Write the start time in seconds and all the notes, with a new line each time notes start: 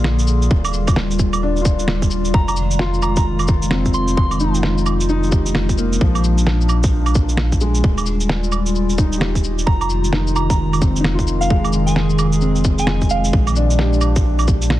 Already playing: A#1 D3 A#3 D4 F4 G#4
0.04 snare
0.19 shaker
0.27 cabasa
0.42 shaker
0.51 D#1 G3 F4, kick
0.65 claves, shaker
0.73 cabasa
0.87 kick, claves, shaker
0.96 snare
1.11 shaker
1.19 kick, cabasa
1.33 claves, shaker
1.43 D4
1.56 shaker
1.61 F4, kick, cabasa
1.79 shaker
1.88 snare
2.02 kick, shaker
2.11 cabasa
2.25 shaker
2.34 F1 D#3 G#3 F4 A#5, kick
2.48 A#5, claves, shaker
2.56 cabasa
2.71 shaker
2.79 F4, snare
2.94 cabasa
3.02 A#5, cabasa, claves
3.16 A#5, kick, shaker
3.39 claves, shaker
3.48 kick, cabasa
3.62 shaker
3.71 C4, snare
3.85 kick, shaker
3.94 C6, cabasa
4.08 shaker
4.17 C6, kick
4.31 claves, shaker
4.40 D#4, cabasa
4.54 shaker
4.63 snare
4.78 cabasa
4.86 cabasa, claves
5.00 shaker
5.09 D#4, cabasa
5.23 shaker
5.29 G4, kick, cabasa
5.46 shaker
5.55 snare
5.69 kick, shaker
5.78 A#3, cabasa
5.93 shaker
6.01 A#1 A#2 F3 D4, kick
6.15 claves, shaker
6.24 cabasa
6.38 shaker
6.47 snare
6.61 cabasa
6.69 cabasa, claves
6.83 kick, shaker
7.06 claves, shaker
7.15 kick, cabasa
7.29 shaker
7.37 snare
7.52 kick, shaker
7.61 G#3, cabasa
7.75 shaker
7.84 D#1 G3 F4, kick
7.98 claves, shaker
8.06 cabasa
8.20 shaker
8.29 snare
8.44 cabasa
8.52 cabasa, claves
8.66 shaker
8.75 cabasa
8.89 shaker
8.98 D#4, kick, cabasa
9.12 shaker
9.18 G4, snare
9.35 kick, shaker
9.44 cabasa
9.58 shaker
9.66 F1 D#3 G#3 A#5, kick
9.81 A#5, claves, shaker
9.90 cabasa
10.04 shaker
10.13 D#4, snare
10.27 cabasa
10.36 A#5, cabasa, claves
10.50 A#5, kick, shaker
10.73 claves, shaker
10.81 C4, kick, cabasa
10.96 shaker
11.00 D#4, snare
11.14 F4
11.19 kick, shaker
11.27 cabasa
11.41 F5, shaker
11.50 G#3 G#4, kick
11.64 claves, shaker
11.73 cabasa
11.86 G#5, shaker
11.96 snare
12.10 cabasa
12.19 cabasa, claves
12.32 shaker
12.41 C4, cabasa
12.56 shaker
12.64 kick, cabasa
12.78 G#5, shaker
12.87 snare
13.01 kick, shaker
13.10 F5, cabasa
13.24 shaker
13.33 A#1 A#2 D4, kick
13.47 claves, shaker
13.56 D4, cabasa
13.70 shaker
13.79 G4, snare
13.93 cabasa
14.01 cabasa, claves
14.16 kick, shaker
14.39 claves, shaker
14.48 kick, cabasa
14.62 shaker
14.70 snare